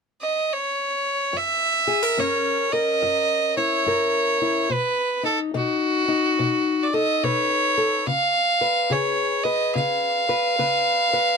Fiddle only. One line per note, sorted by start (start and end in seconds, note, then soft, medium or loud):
0.22 0.55 D#5 medium
0.53 1.39 C#5 medium
1.37 2.21 E5 medium
2.20 2.74 C#5 medium
2.72 3.56 D#5 medium
3.57 4.74 C#5 medium
4.72 5.25 B4 medium
5.25 5.39 A4 medium
5.55 6.84 F#4 medium
6.83 6.95 D5 medium
6.93 7.26 D#5 medium
7.24 8.08 C#5 medium
8.06 8.93 F5 medium
8.92 9.45 C#5 medium
9.43 9.74 D#5 medium
9.75 11.37 F5 medium